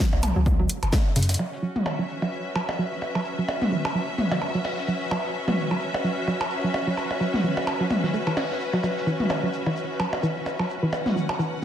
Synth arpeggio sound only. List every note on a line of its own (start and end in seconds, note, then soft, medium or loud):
0.36 0.40 F#3 medium
0.59 0.64 F#3 medium
0.93 0.96 A3 medium
1.16 1.21 C#3 medium
1.39 1.45 F#3 medium
1.63 1.68 F#3 medium
1.99 2.03 F#3 medium
2.22 2.26 F#3 medium
2.56 2.61 F#3 medium
2.79 2.84 F#3 medium
3.15 3.19 F#3 medium
3.39 3.43 F#3 medium
3.72 3.77 F#3 medium
3.95 4.00 F#3 medium
4.32 4.36 F#3 medium
4.55 4.59 F#3 medium
4.88 4.93 F#3 medium
5.11 5.17 F#3 medium
5.48 5.52 F#3 medium
5.71 5.75 F#3 medium
6.04 6.10 F#3 medium
6.28 6.33 F#3 medium
6.64 6.68 F#3 medium
6.87 6.91 F#3 medium
7.21 7.26 F#3 medium
7.44 7.49 F#3 medium
7.80 7.84 F#3 medium
8.04 8.08 F#3 medium
8.14 8.19 A3 medium
8.27 8.31 E3 medium
8.37 8.42 C#4 medium
8.73 8.80 F#3 medium
8.83 8.89 F#3 medium
9.07 9.10 E3 medium
9.43 9.47 F#3 medium
9.66 9.69 E3 loud
10.00 10.05 F#3 medium
10.23 10.26 E3 loud
10.60 10.64 F#3 medium
10.83 10.85 E3 loud
11.16 11.21 F#3 medium
11.39 11.42 E3 medium